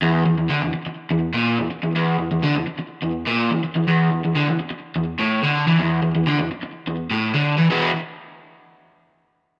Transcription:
\new Staff \with { instrumentName = "Overdriven electric guitar" } { \clef bass \time 4/4 \key e \mixolydian \tempo 4 = 125 e,8 e,16 e,16 d16 e,16 r8. e,8 ais,8 e,16 r16 e,16 | e,8 e,16 e,16 d16 e,16 r8. e,8 ais,8 e,16 r16 e,16 | e,8 e,16 e,16 d16 e,16 r8. e,8 a,8 d8 e16 | e,8 e,16 e,16 d16 e,16 r8. e,8 a,8 d8 e16 |
<e, b, e gis b e'>8 r2. r8 | }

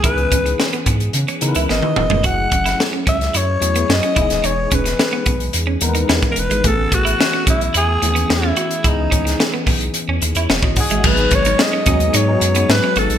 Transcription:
<<
  \new Staff \with { instrumentName = "Alto saxophone" } { \time 4/4 \key cis \minor \tempo 4 = 109 b'4 r2 dis''4 | fis''4 r8 e''8 cis''4 dis''4 | cis''8 b'4. r4 r16. ais'32 b'8 | a'8 fis'4 e'8 gis'4 e'4 |
dis'4 r2 r8 gis'8 | b'8 cis''8 dis''4 cis''4 b'8 a'8 | }
  \new Staff \with { instrumentName = "Clean electric guitar" } { \time 4/4 \key cis \minor e'16 r16 cis'16 r8 b16 b16 r8 cis'16 r16 e'16 b16 r8 gis16 | fis'16 r8 e'16 r16 cis'16 cis'16 r16 e'16 r8 b16 r16 cis'16 e'16 r16 | dis'16 r16 cis'16 r8 b16 b16 r8 cis'16 r16 dis'16 b16 r8 gis16 | a16 r8 e'16 r16 cis'16 cis'16 r16 e'16 r8 b16 r16 cis'16 fis'16 r16 |
e'16 r16 cis'16 r8 b16 b16 r8 cis'16 r16 e'16 b16 r8 gis16 | gis16 r8 dis'16 r16 cis'16 cis'16 r16 dis'16 r8 b16 r16 cis'16 fis'16 r16 | }
  \new Staff \with { instrumentName = "Tine electric piano" } { \time 4/4 \key cis \minor r1 | r1 | r1 | r1 |
r2 r8. <e' cis''>8 <fis' dis''>16 fis''16 <gis' e''>16~ | <gis' e''>16 r2. r8. | }
  \new Staff \with { instrumentName = "Tine electric piano" } { \time 4/4 \key cis \minor <e b cis' dis' gis'>4. r4 <e b cis' dis' ais' b'>4 r8 | <fis a cis' e' gis'>4. r4 <fis a cis' e' gis'>4 <e gis b dis' gis'>8~ | <e gis b dis' gis'>4 r4. <e gis b dis' ais' b'>4 r8 | <e a b bis cis' gis'>4. r4 <e a b cis' gis'>4 r8 |
<e b cis' dis' gis'>4. r2 r8 | <fis gis ais b dis' gis'>4 r8 <fis gis b dis' gis'>8 r16 <fis gis b dis' gis'>4~ <fis gis b dis' gis'>16 r8 | }
  \new Staff \with { instrumentName = "Sub bass" } { \clef bass \time 4/4 \key cis \minor cis,8 cis,8 r8 gis,8 cis16 r16 cis16 cis,16 gis,,16 r16 e,,16 eis,,16 | fis,,8 fis,,8 r8 cis,8 fis,8 e,8 fis,16 r16 e,,16 dis,,16 | e,,8 e,,8 r8 b,,8 e,8 dis,8 e,16 r16 e,,16 gis,,16 | a,,8 a,,8 r8 b,,8 e,8 dis,8 e,8 r8 |
cis,8 cis,8 r8 b,,8 r16 e,16 dis,16 e,16 e,,16 gis,,16 r16 gis,,16 | gis,,8 gis,,8 r8 dis,8 gis,8 fis,8 gis,16 r16 gis,,16 ais,,16 | }
  \new DrumStaff \with { instrumentName = "Drums" } \drummode { \time 4/4 <hh bd>16 hh16 <hh bd>16 hh16 sn16 hh16 <hh bd>16 hh16 hh16 hh16 hh16 hh16 sn16 tommh16 toml16 tomfh16 | <hh bd>8 <hh bd>16 <hh sn>16 sn8 <hh bd>16 <hh sn>16 hh8 hh16 hh16 sn16 hh16 <hh bd>16 <hh sn>16 | hh8 <hh bd>16 <hh sn>16 sn8 <hh bd>16 hh16 hh8 hh16 hh16 sn16 <hh bd>16 hh16 hh16 | <hh bd>8 <hh bd>16 hh16 sn8 <hh bd>16 hh16 hh8 hh16 hh16 sn8 hh16 hh16 |
<hh bd>8 <hh bd>16 <hh sn>16 sn8 <hho bd>16 hh16 hh8 hh16 hh16 sn16 bd16 <hho bd>16 hh16 | <cymc bd>16 hh16 <hh bd>16 hh16 sn8 <hh bd>16 hh16 hh8 hh16 hh16 sn8 hh16 hh16 | }
>>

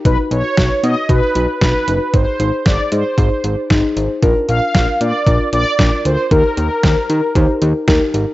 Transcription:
<<
  \new Staff \with { instrumentName = "Analog polysynth" } { \time 4/4 \key aes \lydian \tempo 4 = 115 b'8 cis''4 dis''8 b'4 b'4 | c''4 d''8 c''2 r8 | r8 f''4 d''4 d''4 c''8 | bes'8 bes'2. r8 | }
  \new Staff \with { instrumentName = "Synth keys" } { \time 4/4 \key aes \lydian <dis' fis' b'>8 <dis' fis' b'>8 <dis' fis' b'>8 <dis' fis' b'>8 <dis' fis' b'>8 <dis' fis' b'>8 <dis' fis' b'>8 <dis' fis' b'>8 | <ees' aes' c''>8 <ees' aes' c''>8 <ees' aes' c''>8 <ees' aes' d''>8 <ees' aes' c''>8 <ees' aes' c''>8 <ees' aes' c''>8 <ees' aes' c''>8 | <d' f' bes'>8 <d' f' bes'>8 <d' f' bes'>8 <d' f' bes'>8 <d' f' bes'>8 <d' f' bes'>8 <d' f' bes'>8 <d' f' bes'>8 | <ees' g' bes'>8 <ees' g' bes'>8 <ees' g'>8 <ees' g' bes'>8 <ees' g' c''>8 <ees' g' bes'>8 <ees' g' bes'>8 <ees' g' bes'>8 | }
  \new Staff \with { instrumentName = "Analog synth bass" } { \clef bass \time 4/4 \key aes \lydian b,,16 r16 b,,16 r16 b,,16 r16 b,16 r16 b,,16 r16 b,,16 r16 b,,16 r16 fis,,16 r16 | aes,,16 r16 aes,,16 r16 aes,,16 r16 aes,16 r16 aes,,16 r16 aes,,16 r16 aes,,16 r16 aes,,16 r16 | bes,,16 r16 bes,,16 r16 bes,,16 r16 bes,16 r16 bes,,16 r16 bes,,16 r16 bes,,16 r16 d,16 r16 | ees,16 r16 ees,16 r16 ees,16 r16 ees16 r16 ees,16 r16 ees,16 r16 ees,16 r16 aes,,16 r16 | }
  \new DrumStaff \with { instrumentName = "Drums" } \drummode { \time 4/4 <hh bd>8 hh8 <hh bd sn>8 hh8 <hh bd>8 hh8 <hh bd sn>8 hh8 | <hh bd>8 hh8 <hh bd sn>8 hh8 <hh bd>8 hh8 <hh bd sn>8 hh8 | <hh bd>8 hh8 <hh bd sn>8 hh8 <hh bd>8 hh8 <hh bd sn>8 hh8 | <hh bd>8 hh8 <hh bd sn>8 hh8 <hh bd>8 hh8 <hh bd sn>8 hh8 | }
>>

